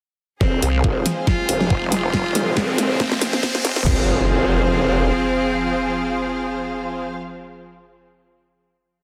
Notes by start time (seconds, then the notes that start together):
0.41 F1 F3 G#3 C4 G#4, kick, snare, riser
0.62 C2 F5, closed hi-hat
0.80 F1 C5, kick
1.06 snare, closed hi-hat
1.27 F4, kick, snare
1.49 F1, closed hi-hat
1.60 snare
1.70 F1, kick
1.92 F1 F4, snare, closed hi-hat
2.14 kick, snare
2.35 F1, snare, closed hi-hat
2.57 C4, kick, snare
2.78 snare, closed hi-hat
3.00 G#1, kick, snare
3.12 snare
3.21 C4, snare, closed hi-hat
3.33 snare
3.43 kick, snare
3.55 snare
3.65 F1, snare, closed hi-hat
3.76 snare
3.86 F1 F3 C4 F4 G#4 C5, kick, crash, impact
3.93 C5
4.00 F5